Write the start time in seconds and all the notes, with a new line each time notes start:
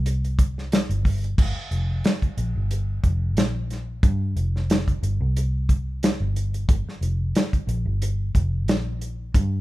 Already playing: C2
0.06 closed hi-hat
0.24 closed hi-hat
0.39 kick, closed hi-hat
0.58 snare
0.72 snare, closed hi-hat
0.89 G1, closed hi-hat
1.05 kick, open hi-hat
1.24 closed hi-hat
1.38 G1, kick, crash
1.56 muted fingered electric bass stroke
1.71 F1, closed hi-hat
2.04 snare, closed hi-hat
2.22 kick, closed hi-hat
2.37 A#1, closed hi-hat
2.56 G1
2.71 closed hi-hat
3.04 F1, kick, closed hi-hat
3.37 A#1, snare, closed hi-hat
3.70 snare, closed hi-hat
4.03 G2, kick, closed hi-hat
4.36 F1, closed hi-hat
4.56 snare
4.70 snare, closed hi-hat
4.88 kick, closed hi-hat
5.03 G1, closed hi-hat
5.21 C2
5.37 closed hi-hat
5.69 kick, closed hi-hat
6.03 snare, closed hi-hat
6.20 G1
6.36 closed hi-hat
6.54 closed hi-hat
6.69 G1, kick, closed hi-hat
6.86 muted fingered electric bass stroke, snare
7.01 F1, closed hi-hat
7.35 snare, closed hi-hat
7.53 kick, closed hi-hat
7.67 A#1, closed hi-hat
7.86 G1
8.02 closed hi-hat
8.35 F1, kick, closed hi-hat
8.67 A#1, snare, closed hi-hat
9.01 closed hi-hat
9.34 G2, kick, closed hi-hat